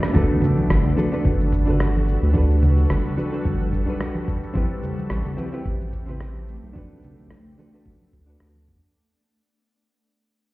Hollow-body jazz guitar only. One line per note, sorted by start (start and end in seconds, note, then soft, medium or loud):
0.00 0.11 D4 loud
0.00 0.12 F#4 medium
0.00 0.12 A4 medium
0.00 0.13 B4 loud
0.13 0.94 D4 medium
0.13 0.94 F#4 medium
0.13 0.95 A4 medium
0.17 0.96 B4 loud
0.96 1.08 D4 medium
0.96 1.09 F#4 medium
0.96 1.09 A4 medium
0.96 1.09 B4 medium
1.12 1.64 D4 medium
1.12 1.64 F#4 medium
1.12 1.65 A4 medium
1.12 1.65 B4 medium
1.66 2.31 D4 medium
1.66 2.32 F#4 medium
1.66 2.33 A4 medium
1.70 2.33 B4 medium
2.33 3.14 D4 medium
2.33 3.14 F#4 medium
2.33 3.15 A4 medium
2.37 3.16 B4 loud
3.17 3.29 D4 medium
3.17 3.29 F#4 medium
3.17 3.29 A4 medium
3.17 3.30 B4 medium
3.31 3.84 D4 medium
3.31 3.84 F#4 medium
3.31 3.85 A4 medium
3.31 3.85 B4 medium
3.86 4.51 D4 medium
3.86 4.52 F#4 medium
3.86 4.52 A4 medium
3.86 4.53 B4 loud
4.53 5.34 C4 medium
4.53 5.35 E4 medium
4.53 5.35 G4 medium
4.53 5.36 B4 loud
5.37 5.49 C4 medium
5.37 5.49 E4 medium
5.37 5.49 G4 medium
5.37 5.50 B4 medium
5.52 6.04 C4 medium
5.52 6.05 E4 medium
5.52 6.05 G4 medium
5.52 6.05 B4 medium
6.06 6.71 C4 medium
6.06 6.72 E4 medium
6.06 6.73 G4 medium
6.10 6.74 B4 medium
6.73 7.54 D4 loud
6.73 7.55 F#4 medium
6.73 7.55 A4 medium
6.78 7.56 B4 loud
7.58 7.69 D4 medium
7.58 7.70 F#4 medium
7.58 7.70 A4 medium
7.58 7.70 B4 medium
7.73 8.25 D4 medium
7.73 8.25 F#4 medium
7.73 8.26 A4 medium
7.73 8.26 B4 medium
8.26 8.91 D4 medium
8.26 8.92 F#4 medium
8.26 8.93 A4 medium
8.26 8.93 B4 medium